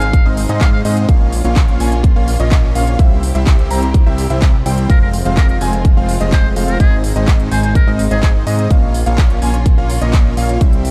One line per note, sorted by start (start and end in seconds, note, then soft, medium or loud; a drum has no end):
0.00 0.23 G#1 medium
0.00 1.05 G#3 medium
0.00 1.05 C4 medium
0.00 1.07 D#4 medium
0.00 0.32 F5 loud
0.00 closed hi-hat medium
0.13 kick loud
0.13 closed hi-hat medium
0.25 0.47 G#1 loud
0.25 0.40 G#3 medium
0.25 0.40 C4 medium
0.25 0.40 D#4 medium
0.25 0.40 C5 medium
0.25 0.40 D#5 medium
0.37 open hi-hat loud
0.49 0.83 G#2 loud
0.49 0.82 G#3 medium
0.49 0.82 C4 medium
0.49 0.82 D#4 medium
0.49 0.82 C5 medium
0.49 0.82 D#5 loud
0.49 closed hi-hat medium
0.61 0.69 F5 medium
0.61 kick loud
0.61 clap loud
0.61 closed hi-hat medium
0.73 0.81 F5 medium
0.85 1.06 G#2 loud
0.85 1.06 G#3 medium
0.85 1.06 C4 medium
0.85 1.06 D#4 medium
0.85 1.06 C5 medium
0.85 1.06 D#5 loud
0.85 open hi-hat loud
0.97 closed hi-hat medium
1.09 1.42 A#1 loud
1.09 2.97 A#3 medium
1.09 1.32 A#3 medium
1.09 2.97 C#4 medium
1.09 1.32 C#4 medium
1.09 2.97 F4 loud
1.09 1.32 F4 medium
1.09 1.32 C#5 medium
1.09 1.32 F5 medium
1.09 kick loud
1.09 closed hi-hat medium
1.33 open hi-hat loud
1.44 1.78 A#1 loud
1.44 1.77 A#3 medium
1.44 1.77 C#4 medium
1.44 1.77 F4 medium
1.44 1.77 C#5 medium
1.44 1.77 F5 medium
1.44 closed hi-hat soft
1.56 kick loud
1.56 clap loud
1.56 closed hi-hat medium
1.68 closed hi-hat soft
1.80 2.13 A#1 loud
1.80 1.94 A#3 medium
1.80 1.94 C#4 medium
1.80 1.94 F4 medium
1.80 1.94 C#5 medium
1.80 1.94 G#5 loud
1.80 open hi-hat loud
1.92 closed hi-hat medium
2.04 kick loud
2.04 closed hi-hat medium
2.16 2.37 A#1 loud
2.16 2.30 A#3 medium
2.16 2.30 C#4 medium
2.16 2.30 F4 medium
2.16 2.30 C#5 medium
2.16 2.30 F5 loud
2.28 open hi-hat loud
2.40 2.73 A#1 loud
2.40 2.73 A#3 loud
2.40 2.73 C#4 medium
2.40 2.73 F4 medium
2.40 2.73 C#5 medium
2.40 2.72 D#5 loud
2.40 2.73 D#5 loud
2.40 closed hi-hat soft
2.52 kick loud
2.52 clap loud
2.52 closed hi-hat medium
2.75 2.97 A#1 loud
2.75 2.96 A#3 medium
2.75 2.96 C#4 medium
2.75 2.96 F4 medium
2.75 2.96 C#5 medium
2.75 2.96 F5 loud
2.75 open hi-hat loud
2.87 closed hi-hat medium
2.99 3.33 C2 loud
2.99 4.88 C3 medium
2.99 3.22 G3 medium
2.99 3.22 C4 medium
2.99 8.67 C4 medium
2.99 3.22 E4 medium
2.99 4.88 E4 medium
2.99 4.88 G4 medium
2.99 3.22 C5 medium
2.99 3.22 E5 medium
2.99 kick loud
2.99 closed hi-hat medium
3.23 open hi-hat loud
3.35 3.68 C2 medium
3.35 3.68 G3 medium
3.35 3.68 C4 medium
3.35 3.68 E4 medium
3.35 3.68 C5 medium
3.35 3.68 E5 medium
3.35 closed hi-hat soft
3.47 kick loud
3.47 clap loud
3.47 closed hi-hat medium
3.59 closed hi-hat soft
3.71 4.04 C2 medium
3.71 3.85 G3 medium
3.71 3.85 C4 medium
3.71 3.85 E4 medium
3.71 3.85 C5 medium
3.71 3.85 A#5 loud
3.71 open hi-hat loud
3.83 closed hi-hat medium
3.94 kick loud
3.94 closed hi-hat medium
4.06 4.28 C2 loud
4.06 4.21 G3 medium
4.06 4.21 C4 medium
4.06 4.21 E4 medium
4.06 4.21 C5 medium
4.06 4.21 E5 medium
4.06 4.21 E5 loud
4.18 open hi-hat loud
4.30 4.63 C2 medium
4.30 4.53 G3 medium
4.30 4.53 C4 medium
4.30 4.53 E4 medium
4.30 4.53 C5 medium
4.30 4.53 E5 medium
4.30 closed hi-hat soft
4.42 kick loud
4.42 clap loud
4.42 closed hi-hat medium
4.66 4.87 C2 loud
4.66 4.87 G3 loud
4.66 4.87 C4 medium
4.66 4.87 E4 medium
4.66 4.87 C5 medium
4.66 4.87 G5 loud
4.66 open hi-hat loud
4.78 closed hi-hat medium
4.90 5.23 F1 medium
4.90 6.78 G#3 medium
4.90 5.12 G#3 medium
4.90 5.12 C4 medium
4.90 6.78 F4 medium
4.90 5.12 F4 medium
4.90 4.97 A#4 medium
4.90 5.12 C5 medium
4.90 5.12 F5 medium
4.90 kick loud
4.90 closed hi-hat medium
5.02 5.09 A#4 medium
5.13 open hi-hat loud
5.25 5.59 F1 loud
5.25 5.58 G#3 medium
5.25 5.58 C4 medium
5.25 5.58 F4 medium
5.25 5.58 C5 medium
5.25 5.58 F5 medium
5.25 closed hi-hat medium
5.37 5.45 A#4 loud
5.37 kick loud
5.37 clap loud
5.37 closed hi-hat medium
5.49 5.57 A#4 medium
5.49 closed hi-hat soft
5.61 5.94 F1 medium
5.61 5.75 G#3 loud
5.61 5.75 C4 medium
5.61 5.75 F4 medium
5.61 5.75 C5 medium
5.61 5.75 G#5 loud
5.61 open hi-hat loud
5.73 closed hi-hat medium
5.85 kick loud
5.85 closed hi-hat medium
5.97 6.18 F1 loud
5.97 6.11 G#3 medium
5.97 6.11 C4 medium
5.97 6.11 F4 medium
5.97 6.11 C5 medium
5.97 6.11 F5 loud
6.09 open hi-hat loud
6.21 6.54 F1 loud
6.21 6.53 G#3 loud
6.21 6.53 C4 medium
6.21 6.53 F4 medium
6.21 6.53 C5 medium
6.21 6.53 D#5 loud
6.21 6.54 D#5 medium
6.21 closed hi-hat medium
6.32 6.49 C5 medium
6.32 kick loud
6.32 clap loud
6.32 closed hi-hat medium
6.56 6.78 F1 loud
6.56 6.77 G#3 loud
6.56 6.77 C4 medium
6.56 6.77 F4 medium
6.56 6.77 C5 medium
6.56 6.77 F5 loud
6.56 open hi-hat loud
6.68 6.78 A#4 medium
6.68 closed hi-hat medium
6.80 7.13 G#1 loud
6.80 8.69 G#3 medium
6.80 7.03 G#3 medium
6.80 7.03 C4 medium
6.80 8.69 D#4 loud
6.80 7.03 D#4 medium
6.80 6.96 G#4 loud
6.80 7.03 C5 medium
6.80 7.03 D#5 medium
6.80 kick loud
6.80 closed hi-hat medium
7.04 open hi-hat loud
7.16 7.49 G#1 loud
7.16 7.49 G#3 medium
7.16 7.49 C4 medium
7.16 7.49 D#4 medium
7.16 7.49 C5 medium
7.16 7.49 D#5 medium
7.16 closed hi-hat medium
7.28 kick loud
7.28 clap loud
7.28 closed hi-hat medium
7.40 closed hi-hat soft
7.51 7.85 G#1 loud
7.51 7.66 G#3 medium
7.51 7.66 C4 medium
7.51 7.66 D#4 medium
7.51 7.59 C5 medium
7.51 7.66 C5 medium
7.51 7.66 G#5 loud
7.51 open hi-hat loud
7.63 7.71 C5 medium
7.63 closed hi-hat medium
7.75 7.92 A#4 medium
7.75 kick loud
7.75 closed hi-hat medium
7.87 8.09 G#1 medium
7.87 8.02 G#3 medium
7.87 8.02 C4 medium
7.87 8.02 D#4 medium
7.87 8.02 C5 medium
7.87 8.02 D#5 loud
7.87 8.02 D#5 medium
7.99 open hi-hat loud
8.11 8.44 G#1 loud
8.11 8.44 G#3 medium
8.11 8.44 C4 medium
8.11 8.44 D#4 medium
8.11 8.19 G#4 medium
8.11 8.44 C5 medium
8.11 8.44 D#5 loud
8.11 closed hi-hat medium
8.23 8.31 G#4 medium
8.23 kick loud
8.23 clap loud
8.23 closed hi-hat medium
8.47 8.68 G#2 medium
8.47 8.68 G#3 medium
8.47 8.68 C4 medium
8.47 8.68 D#4 medium
8.47 8.68 C5 medium
8.47 8.68 D#5 loud
8.47 open hi-hat loud
8.59 closed hi-hat medium
8.71 9.04 A#1 loud
8.71 10.59 A#3 medium
8.71 8.93 A#3 medium
8.71 10.59 C#4 medium
8.71 8.93 C#4 medium
8.71 10.59 F4 medium
8.71 8.93 F4 medium
8.71 8.93 C#5 medium
8.71 8.93 F5 medium
8.71 kick loud
8.71 closed hi-hat medium
8.94 open hi-hat loud
9.06 9.40 A#1 loud
9.06 9.39 A#3 medium
9.06 9.39 C#4 medium
9.06 9.39 F4 medium
9.06 9.39 C#5 medium
9.06 9.39 F5 medium
9.06 closed hi-hat medium
9.18 kick loud
9.18 clap loud
9.18 closed hi-hat medium
9.30 closed hi-hat soft
9.42 9.75 A#1 loud
9.42 9.56 A#3 medium
9.42 9.56 C#4 medium
9.42 9.56 F4 medium
9.42 9.56 C#5 medium
9.42 9.56 G#5 loud
9.42 open hi-hat loud
9.54 closed hi-hat medium
9.66 kick loud
9.66 closed hi-hat medium
9.78 9.99 A#1 loud
9.78 9.92 A#3 medium
9.78 9.92 C#4 medium
9.78 9.92 F4 medium
9.78 9.92 C#5 medium
9.78 9.92 F5 loud
9.90 open hi-hat loud
10.01 10.35 A#1 loud
10.01 10.34 A#3 loud
10.01 10.34 C#4 medium
10.01 10.34 F4 medium
10.01 10.34 C#5 medium
10.01 10.34 D#5 loud
10.01 closed hi-hat medium
10.13 kick loud
10.13 clap loud
10.13 closed hi-hat medium
10.37 10.59 A#1 loud
10.37 10.58 A#3 medium
10.37 10.58 C#4 medium
10.37 10.58 F4 medium
10.37 10.58 C#5 medium
10.37 10.58 F5 loud
10.37 open hi-hat loud
10.49 closed hi-hat medium
10.61 10.91 C2 loud
10.61 10.91 C3 medium
10.61 10.84 G3 medium
10.61 10.84 C4 medium
10.61 10.91 C4 medium
10.61 10.84 E4 medium
10.61 10.91 E4 medium
10.61 10.91 G4 loud
10.61 10.84 C5 medium
10.61 10.84 E5 medium
10.61 kick loud
10.61 closed hi-hat medium
10.73 closed hi-hat soft
10.85 open hi-hat loud